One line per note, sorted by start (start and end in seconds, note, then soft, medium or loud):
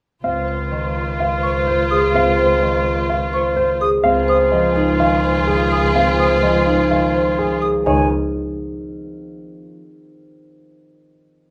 0.23 3.91 C#2 medium
0.23 2.13 C4 medium
0.23 3.77 F4 medium
0.23 3.77 C5 medium
0.23 0.55 F5 medium
0.48 0.79 C5 medium
0.71 2.61 D#3 medium
1.20 1.50 F5 medium
1.43 1.74 C5 medium
1.43 1.52 C#6 medium
1.67 1.98 C5 medium
1.91 2.22 G#4 medium
1.91 2.00 D#6 medium
2.14 4.03 C4 medium
2.14 2.46 F5 medium
2.38 2.69 C5 medium
2.62 4.07 D#3 medium
3.10 3.41 F5 medium
3.33 3.64 C5 medium
3.33 3.42 C#6 medium
3.56 3.88 C5 medium
3.81 4.12 G#4 medium
3.81 3.90 D#6 medium
4.04 7.72 C#2 medium
4.04 5.94 C4 medium
4.04 7.58 F4 medium
4.04 7.58 G#4 medium
4.04 4.35 F5 medium
4.28 4.60 C5 medium
4.28 4.38 D#6 medium
4.51 6.41 F3 medium
4.51 4.83 D#5 medium
4.76 5.07 D#4 medium
5.00 6.89 D#3 medium
5.00 5.31 F5 medium
5.24 5.55 C5 medium
5.24 5.33 C6 medium
5.47 5.79 G#4 medium
5.71 6.02 G#4 medium
5.71 5.81 D#6 medium
5.95 9.78 C4 medium
5.95 6.26 F5 medium
6.19 6.50 C5 medium
6.19 6.28 D#6 medium
6.42 9.78 F3 medium
6.42 6.74 D#5 medium
6.67 6.98 D#4 medium
6.90 7.85 D#3 medium
6.90 7.22 F5 medium
7.14 7.45 C5 medium
7.14 7.23 C6 medium
7.39 7.69 G#4 medium
7.62 7.93 G#4 medium
7.62 7.71 D#6 medium
7.85 8.08 C#2 medium
7.85 8.08 D#3 medium
7.85 8.08 D#4 medium
7.85 8.09 C#5 medium
7.85 8.08 G#5 medium